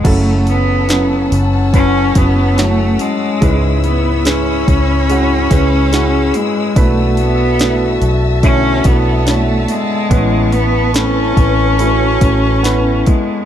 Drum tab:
CC |x-------|--------|--------|--------|
HH |oooooooo|oooooooo|oooooooo|oooooooo|
SD |--o--oo-|--o--oo-|--o--oo-|--o--oo-|
BD |o---oo--|o--o-o--|o---oo--|o--o-o-o|